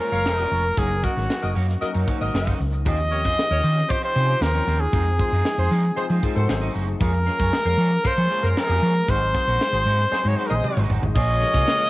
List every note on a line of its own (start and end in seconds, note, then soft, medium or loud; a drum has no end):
0.00 0.38 G#3 medium
0.00 0.38 A#3 medium
0.00 0.11 C#4 medium
0.00 0.38 C#4 medium
0.00 0.12 F4 medium
0.00 0.38 F4 medium
0.00 0.11 A#4 medium
0.00 0.39 A#4 medium
0.00 0.80 A#4 loud
0.00 0.11 C#5 medium
0.00 closed hi-hat medium
0.12 0.26 F#1 medium
0.12 0.49 A#4 medium
0.12 0.50 C#5 loud
0.12 0.50 F5 loud
0.12 muted clean electric guitar stroke soft
0.12 closed hi-hat soft
0.25 0.44 F1 medium
0.25 muted clean electric guitar stroke soft
0.25 snare loud
0.37 0.74 G#3 medium
0.37 0.74 A#3 medium
0.37 0.75 C#4 medium
0.37 0.50 C#4 medium
0.37 0.75 F4 medium
0.37 0.51 F4 medium
0.37 0.51 A#4 medium
0.37 0.75 A#4 medium
0.37 0.52 D#5 medium
0.37 closed hi-hat soft
0.52 0.70 F1 loud
0.52 0.64 C#4 medium
0.52 0.64 F4 medium
0.52 0.63 A#4 medium
0.52 0.63 C#5 medium
0.52 open hi-hat medium
0.64 muted clean electric guitar stroke medium
0.64 closed hi-hat soft
0.77 1.05 F#1 loud
0.77 1.74 F#3 medium
0.77 0.93 A#3 medium
0.77 1.74 A#3 medium
0.77 1.74 C#4 medium
0.77 0.90 D#4 medium
0.77 1.75 D#4 medium
0.77 0.89 F#4 loud
0.77 1.05 G#4 medium
0.77 1.75 A#4 medium
0.77 0.89 C#5 loud
0.77 kick loud
0.77 closed hi-hat medium
0.90 muted clean electric guitar stroke medium
0.90 closed hi-hat soft
1.03 1.14 F#4 medium
1.03 1.56 F#4 medium
1.03 1.14 A#4 medium
1.03 1.14 D#5 medium
1.03 muted clean electric guitar stroke soft
1.03 kick medium
1.03 snare soft
1.03 closed hi-hat medium
1.16 1.26 G#1 medium
1.16 1.27 A#3 soft
1.16 1.28 D#4 medium
1.16 1.28 F#4 medium
1.16 1.28 C#5 medium
1.16 snare soft
1.16 closed hi-hat soft
1.28 muted clean electric guitar stroke soft
1.28 snare loud
1.41 1.52 F#1 medium
1.41 1.53 F#4 medium
1.41 1.53 A#4 medium
1.41 1.53 D#5 medium
1.41 muted clean electric guitar stroke soft
1.41 closed hi-hat soft
1.55 1.74 F#2 medium
1.55 1.71 A#3 medium
1.55 1.67 D#4 medium
1.55 1.67 F#4 medium
1.55 1.67 C#5 medium
1.55 open hi-hat medium
1.68 muted clean electric guitar stroke soft
1.68 snare soft
1.68 closed hi-hat soft
1.81 2.05 F#3 medium
1.81 2.06 A#3 medium
1.81 2.06 C#4 medium
1.81 2.06 D#4 medium
1.81 1.90 F#4 medium
1.81 1.90 A#4 medium
1.81 2.06 A#4 loud
1.81 1.90 D#5 loud
1.81 muted clean electric guitar stroke soft
1.81 muted fingered electric bass stroke soft
1.81 closed hi-hat medium
1.94 2.04 F#2 medium
1.94 2.05 A#3 soft
1.94 2.06 D#4 medium
1.94 2.06 F#4 medium
1.94 2.07 C#5 medium
1.94 closed hi-hat medium
2.07 2.80 F#3 medium
2.07 2.23 A#3 medium
2.07 2.80 A#3 medium
2.07 2.80 C#4 medium
2.07 2.20 D#4 medium
2.07 2.80 D#4 medium
2.07 2.20 F#4 medium
2.07 2.80 C5 medium
2.07 2.19 C#5 medium
2.07 kick medium
2.07 closed hi-hat medium
2.20 2.30 G#1 medium
2.20 2.58 F#4 medium
2.20 2.58 A#4 medium
2.20 2.58 D#5 loud
2.20 muted clean electric guitar stroke soft
2.20 closed hi-hat medium
2.33 2.52 F#1 medium
2.33 muted clean electric guitar stroke soft
2.33 snare loud
2.46 2.58 A#3 medium
2.46 2.59 D#4 medium
2.46 2.59 F#4 medium
2.46 2.60 D#5 medium
2.46 kick medium
2.46 snare soft
2.46 closed hi-hat soft
2.60 2.86 C#2 medium
2.60 muted clean electric guitar stroke soft
2.60 open hi-hat medium
2.73 muted clean electric guitar stroke soft
2.73 closed hi-hat soft
2.85 3.25 D#2 loud
2.85 3.34 F3 medium
2.85 3.34 C4 medium
2.85 3.01 C#4 medium
2.85 3.34 C#4 medium
2.85 3.34 D#4 medium
2.85 2.99 F4 medium
2.85 3.34 G4 medium
2.85 2.98 G4 medium
2.85 2.98 C5 medium
2.85 3.92 D#5 loud
2.85 kick loud
2.85 closed hi-hat medium
2.99 muted clean electric guitar stroke soft
2.99 closed hi-hat medium
3.11 3.22 G4 medium
3.11 3.23 A#4 medium
3.11 3.22 C#5 medium
3.11 muted clean electric guitar stroke soft
3.11 closed hi-hat medium
3.24 3.34 F2 medium
3.24 3.36 C#4 medium
3.24 3.36 F4 medium
3.24 3.37 G4 medium
3.24 3.37 C5 medium
3.24 kick medium
3.24 snare soft
3.24 closed hi-hat soft
3.37 4.10 F3 medium
3.37 4.10 C4 medium
3.37 4.10 C#4 medium
3.37 4.10 D#4 medium
3.37 4.10 G4 medium
3.37 muted clean electric guitar stroke soft
3.37 snare loud
3.50 3.60 D#2 medium
3.50 3.62 G4 medium
3.50 3.61 A#4 medium
3.50 3.62 C#5 medium
3.50 muted clean electric guitar stroke soft
3.50 closed hi-hat medium
3.63 3.82 D#3 medium
3.63 3.79 C#4 medium
3.63 3.75 F4 medium
3.63 3.75 G4 medium
3.63 3.74 C5 medium
3.63 open hi-hat medium
3.76 muted clean electric guitar stroke soft
3.76 snare soft
3.76 closed hi-hat soft
3.88 3.97 F4 medium
3.88 3.97 G4 medium
3.88 3.97 C5 loud
3.88 4.03 C5 medium
3.88 muted clean electric guitar stroke soft
3.88 kick medium
3.88 closed hi-hat medium
4.01 4.14 C#4 soft
4.01 4.14 F4 medium
4.01 4.14 G4 medium
4.01 4.14 C5 medium
4.01 4.44 C5 loud
4.01 closed hi-hat medium
4.14 4.34 C3 medium
4.14 4.51 F3 medium
4.14 4.51 C4 medium
4.14 4.31 C#4 medium
4.14 4.52 C#4 medium
4.14 4.52 D#4 medium
4.14 4.27 F4 medium
4.14 4.27 G4 medium
4.14 4.52 G4 medium
4.14 4.27 C5 medium
4.14 closed hi-hat medium
4.28 4.65 F4 medium
4.28 4.65 G4 medium
4.28 4.65 C5 medium
4.28 muted clean electric guitar stroke soft
4.28 closed hi-hat medium
4.41 4.59 D#2 medium
4.41 4.82 A#4 loud
4.41 muted clean electric guitar stroke soft
4.41 snare loud
4.54 4.90 F3 medium
4.54 4.90 C4 medium
4.54 4.91 C#4 medium
4.54 4.66 C#4 medium
4.54 4.91 D#4 medium
4.54 4.66 F4 medium
4.54 4.67 G4 medium
4.54 4.91 A#4 medium
4.54 4.67 C#5 medium
4.54 closed hi-hat soft
4.67 4.86 D#2 medium
4.67 4.83 C#4 medium
4.67 4.80 F4 medium
4.67 4.79 G4 medium
4.67 4.79 C5 medium
4.67 open hi-hat medium
4.80 6.36 G#4 medium
4.80 muted clean electric guitar stroke soft
4.80 closed hi-hat soft
4.92 5.21 F2 loud
4.92 5.89 F3 medium
4.92 5.09 G#3 medium
4.92 5.90 G#3 medium
4.92 5.90 C4 medium
4.92 5.90 D#4 medium
4.92 5.06 D#4 medium
4.92 5.05 F4 medium
4.92 5.90 G#4 medium
4.92 5.05 C5 medium
4.92 kick loud
4.92 closed hi-hat medium
5.06 muted clean electric guitar stroke soft
5.06 closed hi-hat medium
5.19 5.31 F4 medium
5.19 5.31 G#4 medium
5.19 5.31 C5 medium
5.19 muted clean electric guitar stroke soft
5.19 kick medium
5.19 closed hi-hat medium
5.32 5.42 F#2 medium
5.32 5.43 G#3 medium
5.32 5.44 D#4 medium
5.32 5.44 F4 medium
5.32 5.45 C5 medium
5.32 closed hi-hat soft
5.45 muted clean electric guitar stroke soft
5.45 snare loud
5.58 5.67 F2 medium
5.58 5.69 F4 medium
5.58 5.70 G#4 medium
5.58 5.70 C5 medium
5.58 muted clean electric guitar stroke soft
5.58 closed hi-hat soft
5.71 5.89 F3 medium
5.71 5.87 G#3 medium
5.71 5.84 D#4 medium
5.71 5.84 F4 medium
5.71 5.83 C5 medium
5.71 open hi-hat medium
5.84 muted clean electric guitar stroke soft
5.84 closed hi-hat soft
5.96 6.21 F3 medium
5.96 6.21 G#3 medium
5.96 6.21 C4 medium
5.96 6.21 D#4 medium
5.96 6.05 F4 medium
5.96 6.05 G#4 medium
5.96 6.21 G#4 loud
5.96 6.05 C5 loud
5.96 muted fingered electric bass stroke soft
5.96 muted clean electric guitar stroke soft
5.96 closed hi-hat medium
6.10 6.19 F3 medium
6.10 6.22 G#3 medium
6.10 6.22 D#4 soft
6.10 6.23 F4 medium
6.10 6.23 C5 medium
6.10 closed hi-hat medium
6.22 6.49 F3 medium
6.22 6.49 G#3 medium
6.22 6.39 G#3 medium
6.22 6.49 C4 medium
6.22 6.48 D#4 medium
6.22 6.36 D#4 medium
6.22 6.35 F4 medium
6.22 6.49 A#4 medium
6.22 6.35 C5 medium
6.22 kick medium
6.22 closed hi-hat medium
6.35 6.45 G#2 medium
6.35 6.73 F#4 medium
6.35 6.73 A4 medium
6.35 6.73 C5 loud
6.35 muted clean electric guitar stroke soft
6.35 closed hi-hat medium
6.48 6.67 G#1 loud
6.48 6.97 F#3 medium
6.48 6.97 A3 medium
6.48 6.55 B3 medium
6.48 6.97 D#4 medium
6.48 6.97 G#4 loud
6.48 muted clean electric guitar stroke soft
6.48 snare loud
6.55 7.00 C4 medium
6.62 6.73 A3 medium
6.62 6.74 D#4 medium
6.62 6.74 F#4 medium
6.62 6.76 D#5 medium
6.62 closed hi-hat soft
6.74 6.93 F#1 medium
6.74 6.87 A3 medium
6.74 6.87 D#4 medium
6.74 6.87 F#4 medium
6.74 6.87 C5 medium
6.74 open hi-hat medium
6.88 muted clean electric guitar stroke soft
6.88 closed hi-hat soft
7.00 7.28 F2 loud
7.00 7.49 F3 medium
7.00 7.49 G#3 medium
7.00 7.49 A#3 medium
7.00 7.16 A#3 medium
7.00 7.49 C#4 medium
7.00 7.13 F4 loud
7.00 7.49 G#4 medium
7.00 7.13 G#4 medium
7.00 8.08 A#4 loud
7.00 7.13 C#5 medium
7.00 kick loud
7.00 closed hi-hat medium
7.14 muted clean electric guitar stroke soft
7.14 closed hi-hat medium
7.26 7.38 C#4 medium
7.26 7.38 F4 medium
7.26 7.38 A#4 medium
7.26 muted clean electric guitar stroke soft
7.26 snare soft
7.26 closed hi-hat medium
7.40 7.49 F#2 loud
7.40 7.52 A#3 soft
7.40 7.52 F4 medium
7.40 7.52 G#4 medium
7.40 7.52 C#5 medium
7.40 kick medium
7.40 snare soft
7.40 closed hi-hat soft
7.51 8.24 F3 medium
7.51 8.25 G#3 medium
7.51 8.25 A#3 medium
7.51 8.25 C#4 medium
7.51 8.25 G#4 medium
7.51 muted clean electric guitar stroke soft
7.51 snare loud
7.65 7.75 F2 loud
7.65 7.77 C#4 medium
7.65 7.77 F4 medium
7.65 7.77 A#4 medium
7.65 muted clean electric guitar stroke soft
7.65 closed hi-hat soft
7.78 7.96 F3 loud
7.78 7.94 A#3 medium
7.78 7.91 F4 medium
7.78 7.91 G#4 medium
7.78 7.91 C#5 loud
7.78 open hi-hat medium
7.92 muted clean electric guitar stroke soft
7.92 closed hi-hat soft
8.04 8.13 C#4 medium
8.04 8.13 F4 loud
8.04 8.12 A#4 loud
8.04 8.50 C5 loud
8.04 muted clean electric guitar stroke soft
8.04 muted fingered electric bass stroke soft
8.04 kick loud
8.04 closed hi-hat medium
8.17 8.27 F3 medium
8.17 8.29 A#3 soft
8.17 8.29 F4 medium
8.17 8.30 G#4 soft
8.17 8.30 C#5 medium
8.17 closed hi-hat medium
8.30 8.67 F3 medium
8.30 8.67 G#3 medium
8.30 8.46 A#3 medium
8.30 8.67 A#3 medium
8.30 8.67 C#4 medium
8.30 8.43 F4 medium
8.30 8.42 G#4 loud
8.30 8.67 G#4 medium
8.30 8.42 C#5 medium
8.30 closed hi-hat medium
8.43 8.52 F#2 medium
8.43 8.80 C#4 medium
8.43 8.80 F4 medium
8.43 8.80 A#4 loud
8.43 muted clean electric guitar stroke soft
8.43 closed hi-hat medium
8.50 8.60 C5 medium
8.56 9.11 A#4 loud
8.56 muted clean electric guitar stroke soft
8.56 snare loud
8.69 8.78 F2 medium
8.69 9.05 F3 medium
8.69 9.06 G#3 medium
8.69 9.06 A#3 medium
8.69 8.81 A#3 medium
8.69 9.06 C#4 medium
8.69 8.81 F4 medium
8.69 8.82 G#4 medium
8.69 9.06 G#4 medium
8.69 8.83 D#5 medium
8.69 closed hi-hat soft
8.82 9.00 F3 loud
8.82 8.95 A#3 medium
8.82 8.95 F4 medium
8.82 8.94 G#4 medium
8.82 8.94 C#5 medium
8.82 open hi-hat medium
8.95 muted clean electric guitar stroke soft
8.95 closed hi-hat soft
9.08 9.36 G#1 loud
9.08 10.04 F#3 medium
9.08 10.05 G#3 medium
9.08 9.24 G#3 medium
9.08 10.05 C4 medium
9.08 10.05 D#4 medium
9.08 9.21 D#4 medium
9.08 9.21 F#4 medium
9.08 10.05 G#4 loud
9.08 9.20 C5 medium
9.08 10.29 C5 loud
9.08 kick loud
9.08 closed hi-hat medium
9.22 muted clean electric guitar stroke soft
9.22 closed hi-hat medium
9.34 9.45 F#4 medium
9.34 9.45 G#4 medium
9.34 9.45 C5 medium
9.34 muted clean electric guitar stroke soft
9.34 kick medium
9.34 snare soft
9.34 closed hi-hat medium
9.47 9.56 A#1 medium
9.47 9.59 G#3 soft
9.47 9.60 D#4 medium
9.47 9.60 F#4 medium
9.47 9.60 C5 medium
9.47 closed hi-hat soft
9.61 muted clean electric guitar stroke soft
9.61 snare loud
9.72 9.87 G#1 medium
9.72 9.84 F#4 medium
9.72 9.84 G#4 medium
9.72 9.84 C5 medium
9.72 muted clean electric guitar stroke soft
9.72 closed hi-hat soft
9.86 10.04 G#2 medium
9.86 10.02 G#3 medium
9.86 9.99 D#4 medium
9.86 9.99 F#4 medium
9.86 9.98 C5 medium
9.86 open hi-hat medium
9.99 muted clean electric guitar stroke soft
9.99 snare soft
9.99 closed hi-hat soft
10.11 10.36 F#3 loud
10.11 10.36 G#3 medium
10.11 10.36 C4 medium
10.11 10.36 D#4 medium
10.11 10.20 F#4 medium
10.11 10.20 G#4 medium
10.11 10.36 G#4 medium
10.11 10.20 C5 loud
10.11 muted fingered electric bass stroke soft
10.11 muted clean electric guitar stroke soft
10.11 snare medium
10.25 10.34 G#2 loud
10.25 10.37 G#3 medium
10.25 10.38 D#4 medium
10.25 10.37 F#4 medium
10.25 10.37 C5 medium
10.25 10.38 C#5 medium
10.37 11.10 F#3 medium
10.37 11.10 G#3 medium
10.37 10.54 G#3 medium
10.37 11.10 C4 medium
10.37 11.10 D#4 medium
10.37 10.51 D#4 loud
10.37 10.51 F#4 medium
10.37 11.11 G#4 medium
10.37 10.48 C5 medium
10.37 10.50 C5 loud
10.47 10.60 A#1 medium
10.47 10.87 G#4 loud
10.47 10.57 A#4 medium
10.47 10.87 C5 medium
10.47 10.87 D#5 loud
10.51 10.64 C5 medium
10.51 muted clean electric guitar stroke soft
10.51 high tom medium
10.64 muted clean electric guitar stroke soft
10.64 mid tom medium
10.77 10.86 G#1 medium
10.77 10.89 G#3 medium
10.77 10.89 D#4 medium
10.77 10.90 F#4 medium
10.77 10.91 D#5 medium
10.77 mid tom medium
10.89 10.98 G#1 medium
10.89 11.02 G#3 medium
10.89 11.02 D#4 medium
10.89 11.03 F#4 medium
10.89 11.02 C5 medium
10.89 floor tom medium
11.02 11.11 G#1 medium
11.02 muted clean electric guitar stroke soft
11.02 floor tom medium
11.14 11.43 A#1 loud
11.14 11.90 C#3 medium
11.14 11.90 G#3 medium
11.14 11.90 A#3 medium
11.14 11.40 A#3 medium
11.14 11.90 F4 medium
11.14 11.40 F4 medium
11.14 11.90 G#4 medium
11.14 11.40 G#4 medium
11.14 11.90 A#4 medium
11.14 11.90 C#5 loud
11.14 11.40 C#5 medium
11.14 11.90 D#5 loud
11.14 kick loud
11.14 crash medium
11.29 closed hi-hat medium
11.41 11.90 F3 medium
11.41 11.90 G#3 medium
11.41 11.90 A#3 medium
11.41 11.90 C#4 medium
11.41 11.48 G4 medium
11.41 muted clean electric guitar stroke soft
11.41 snare soft
11.41 closed hi-hat medium
11.48 11.90 G#4 medium
11.54 11.63 C2 loud
11.54 11.66 A#3 medium
11.54 11.66 F4 medium
11.54 11.66 G#4 medium
11.54 11.67 C#5 medium
11.54 kick medium
11.54 snare soft
11.54 closed hi-hat soft
11.67 muted clean electric guitar stroke soft
11.67 snare loud
11.80 muted clean electric guitar stroke soft
11.80 closed hi-hat medium